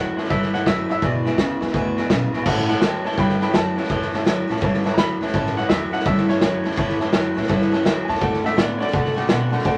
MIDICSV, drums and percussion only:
0, 0, Header, 1, 2, 480
1, 0, Start_track
1, 0, Tempo, 359497
1, 1369, Time_signature, 4, 2, 24, 8
1, 13054, End_track
2, 0, Start_track
2, 0, Title_t, "Drums"
2, 240, Note_on_c, 9, 38, 32
2, 326, Note_off_c, 9, 38, 0
2, 326, Note_on_c, 9, 38, 32
2, 406, Note_on_c, 9, 36, 112
2, 409, Note_off_c, 9, 38, 0
2, 409, Note_on_c, 9, 38, 34
2, 540, Note_off_c, 9, 36, 0
2, 542, Note_off_c, 9, 38, 0
2, 567, Note_on_c, 9, 38, 33
2, 700, Note_off_c, 9, 38, 0
2, 717, Note_on_c, 9, 38, 37
2, 851, Note_off_c, 9, 38, 0
2, 885, Note_on_c, 9, 36, 86
2, 887, Note_on_c, 9, 38, 96
2, 887, Note_on_c, 9, 44, 82
2, 1019, Note_off_c, 9, 36, 0
2, 1020, Note_off_c, 9, 38, 0
2, 1020, Note_off_c, 9, 44, 0
2, 1202, Note_on_c, 9, 38, 36
2, 1335, Note_off_c, 9, 38, 0
2, 1365, Note_on_c, 9, 36, 108
2, 1365, Note_on_c, 9, 38, 33
2, 1498, Note_off_c, 9, 36, 0
2, 1498, Note_off_c, 9, 38, 0
2, 1681, Note_on_c, 9, 38, 35
2, 1814, Note_off_c, 9, 38, 0
2, 1844, Note_on_c, 9, 36, 73
2, 1844, Note_on_c, 9, 38, 99
2, 1844, Note_on_c, 9, 44, 79
2, 1978, Note_off_c, 9, 36, 0
2, 1978, Note_off_c, 9, 38, 0
2, 1978, Note_off_c, 9, 44, 0
2, 2155, Note_on_c, 9, 38, 36
2, 2238, Note_off_c, 9, 38, 0
2, 2238, Note_on_c, 9, 38, 34
2, 2323, Note_off_c, 9, 38, 0
2, 2323, Note_on_c, 9, 36, 115
2, 2323, Note_on_c, 9, 38, 36
2, 2456, Note_off_c, 9, 38, 0
2, 2457, Note_off_c, 9, 36, 0
2, 2632, Note_on_c, 9, 38, 36
2, 2766, Note_off_c, 9, 38, 0
2, 2803, Note_on_c, 9, 36, 83
2, 2804, Note_on_c, 9, 38, 107
2, 2804, Note_on_c, 9, 44, 85
2, 2936, Note_off_c, 9, 36, 0
2, 2937, Note_off_c, 9, 38, 0
2, 2937, Note_off_c, 9, 44, 0
2, 3117, Note_on_c, 9, 38, 33
2, 3250, Note_off_c, 9, 38, 0
2, 3279, Note_on_c, 9, 38, 36
2, 3279, Note_on_c, 9, 49, 110
2, 3282, Note_on_c, 9, 36, 121
2, 3413, Note_off_c, 9, 38, 0
2, 3413, Note_off_c, 9, 49, 0
2, 3415, Note_off_c, 9, 36, 0
2, 3446, Note_on_c, 9, 38, 41
2, 3580, Note_off_c, 9, 38, 0
2, 3603, Note_on_c, 9, 38, 38
2, 3737, Note_off_c, 9, 38, 0
2, 3760, Note_on_c, 9, 38, 110
2, 3760, Note_on_c, 9, 44, 86
2, 3893, Note_off_c, 9, 38, 0
2, 3893, Note_off_c, 9, 44, 0
2, 4077, Note_on_c, 9, 38, 38
2, 4161, Note_off_c, 9, 38, 0
2, 4161, Note_on_c, 9, 38, 34
2, 4241, Note_off_c, 9, 38, 0
2, 4241, Note_on_c, 9, 38, 38
2, 4242, Note_on_c, 9, 36, 114
2, 4374, Note_off_c, 9, 38, 0
2, 4375, Note_off_c, 9, 36, 0
2, 4400, Note_on_c, 9, 38, 42
2, 4534, Note_off_c, 9, 38, 0
2, 4558, Note_on_c, 9, 38, 39
2, 4691, Note_off_c, 9, 38, 0
2, 4725, Note_on_c, 9, 38, 111
2, 4725, Note_on_c, 9, 44, 82
2, 4859, Note_off_c, 9, 38, 0
2, 4859, Note_off_c, 9, 44, 0
2, 5042, Note_on_c, 9, 38, 38
2, 5123, Note_off_c, 9, 38, 0
2, 5123, Note_on_c, 9, 38, 35
2, 5204, Note_off_c, 9, 38, 0
2, 5204, Note_on_c, 9, 38, 37
2, 5205, Note_on_c, 9, 36, 107
2, 5338, Note_off_c, 9, 38, 0
2, 5339, Note_off_c, 9, 36, 0
2, 5366, Note_on_c, 9, 38, 38
2, 5500, Note_off_c, 9, 38, 0
2, 5523, Note_on_c, 9, 38, 40
2, 5657, Note_off_c, 9, 38, 0
2, 5693, Note_on_c, 9, 38, 105
2, 5693, Note_on_c, 9, 44, 90
2, 5826, Note_off_c, 9, 38, 0
2, 5826, Note_off_c, 9, 44, 0
2, 6007, Note_on_c, 9, 38, 34
2, 6090, Note_off_c, 9, 38, 0
2, 6090, Note_on_c, 9, 38, 34
2, 6165, Note_off_c, 9, 38, 0
2, 6165, Note_on_c, 9, 38, 37
2, 6167, Note_on_c, 9, 36, 116
2, 6298, Note_off_c, 9, 38, 0
2, 6301, Note_off_c, 9, 36, 0
2, 6328, Note_on_c, 9, 38, 38
2, 6462, Note_off_c, 9, 38, 0
2, 6485, Note_on_c, 9, 38, 38
2, 6619, Note_off_c, 9, 38, 0
2, 6645, Note_on_c, 9, 38, 116
2, 6645, Note_on_c, 9, 44, 81
2, 6778, Note_off_c, 9, 38, 0
2, 6778, Note_off_c, 9, 44, 0
2, 6967, Note_on_c, 9, 38, 36
2, 7043, Note_off_c, 9, 38, 0
2, 7043, Note_on_c, 9, 38, 39
2, 7128, Note_off_c, 9, 38, 0
2, 7128, Note_on_c, 9, 38, 36
2, 7129, Note_on_c, 9, 36, 113
2, 7261, Note_off_c, 9, 38, 0
2, 7263, Note_off_c, 9, 36, 0
2, 7291, Note_on_c, 9, 38, 36
2, 7425, Note_off_c, 9, 38, 0
2, 7447, Note_on_c, 9, 38, 38
2, 7581, Note_off_c, 9, 38, 0
2, 7605, Note_on_c, 9, 38, 100
2, 7605, Note_on_c, 9, 44, 83
2, 7739, Note_off_c, 9, 38, 0
2, 7739, Note_off_c, 9, 44, 0
2, 7914, Note_on_c, 9, 38, 39
2, 8008, Note_off_c, 9, 38, 0
2, 8008, Note_on_c, 9, 38, 35
2, 8081, Note_off_c, 9, 38, 0
2, 8081, Note_on_c, 9, 38, 36
2, 8087, Note_on_c, 9, 36, 120
2, 8215, Note_off_c, 9, 38, 0
2, 8221, Note_off_c, 9, 36, 0
2, 8242, Note_on_c, 9, 38, 43
2, 8376, Note_off_c, 9, 38, 0
2, 8400, Note_on_c, 9, 38, 41
2, 8534, Note_off_c, 9, 38, 0
2, 8563, Note_on_c, 9, 38, 108
2, 8563, Note_on_c, 9, 44, 89
2, 8696, Note_off_c, 9, 38, 0
2, 8696, Note_off_c, 9, 44, 0
2, 8872, Note_on_c, 9, 38, 38
2, 8961, Note_off_c, 9, 38, 0
2, 8961, Note_on_c, 9, 38, 34
2, 9043, Note_off_c, 9, 38, 0
2, 9043, Note_on_c, 9, 38, 36
2, 9046, Note_on_c, 9, 36, 117
2, 9177, Note_off_c, 9, 38, 0
2, 9180, Note_off_c, 9, 36, 0
2, 9203, Note_on_c, 9, 38, 38
2, 9336, Note_off_c, 9, 38, 0
2, 9351, Note_on_c, 9, 38, 36
2, 9485, Note_off_c, 9, 38, 0
2, 9517, Note_on_c, 9, 38, 110
2, 9517, Note_on_c, 9, 44, 86
2, 9651, Note_off_c, 9, 38, 0
2, 9651, Note_off_c, 9, 44, 0
2, 9839, Note_on_c, 9, 38, 35
2, 9919, Note_off_c, 9, 38, 0
2, 9919, Note_on_c, 9, 38, 38
2, 10006, Note_off_c, 9, 38, 0
2, 10006, Note_on_c, 9, 38, 34
2, 10007, Note_on_c, 9, 36, 113
2, 10139, Note_off_c, 9, 38, 0
2, 10141, Note_off_c, 9, 36, 0
2, 10165, Note_on_c, 9, 38, 40
2, 10299, Note_off_c, 9, 38, 0
2, 10320, Note_on_c, 9, 38, 40
2, 10454, Note_off_c, 9, 38, 0
2, 10489, Note_on_c, 9, 38, 110
2, 10489, Note_on_c, 9, 44, 82
2, 10623, Note_off_c, 9, 38, 0
2, 10623, Note_off_c, 9, 44, 0
2, 10803, Note_on_c, 9, 38, 35
2, 10885, Note_off_c, 9, 38, 0
2, 10885, Note_on_c, 9, 38, 38
2, 10966, Note_off_c, 9, 38, 0
2, 10966, Note_on_c, 9, 38, 35
2, 10968, Note_on_c, 9, 36, 108
2, 11100, Note_off_c, 9, 38, 0
2, 11101, Note_off_c, 9, 36, 0
2, 11132, Note_on_c, 9, 38, 38
2, 11266, Note_off_c, 9, 38, 0
2, 11287, Note_on_c, 9, 38, 39
2, 11420, Note_off_c, 9, 38, 0
2, 11454, Note_on_c, 9, 38, 108
2, 11454, Note_on_c, 9, 44, 86
2, 11588, Note_off_c, 9, 38, 0
2, 11588, Note_off_c, 9, 44, 0
2, 11762, Note_on_c, 9, 38, 37
2, 11851, Note_off_c, 9, 38, 0
2, 11851, Note_on_c, 9, 38, 34
2, 11930, Note_on_c, 9, 36, 126
2, 11932, Note_off_c, 9, 38, 0
2, 11932, Note_on_c, 9, 38, 39
2, 12063, Note_off_c, 9, 36, 0
2, 12066, Note_off_c, 9, 38, 0
2, 12088, Note_on_c, 9, 38, 38
2, 12221, Note_off_c, 9, 38, 0
2, 12239, Note_on_c, 9, 38, 41
2, 12373, Note_off_c, 9, 38, 0
2, 12402, Note_on_c, 9, 38, 118
2, 12402, Note_on_c, 9, 44, 88
2, 12535, Note_off_c, 9, 38, 0
2, 12535, Note_off_c, 9, 44, 0
2, 12713, Note_on_c, 9, 38, 36
2, 12799, Note_off_c, 9, 38, 0
2, 12799, Note_on_c, 9, 38, 34
2, 12887, Note_off_c, 9, 38, 0
2, 12887, Note_on_c, 9, 36, 112
2, 12887, Note_on_c, 9, 38, 37
2, 13020, Note_off_c, 9, 36, 0
2, 13020, Note_off_c, 9, 38, 0
2, 13054, End_track
0, 0, End_of_file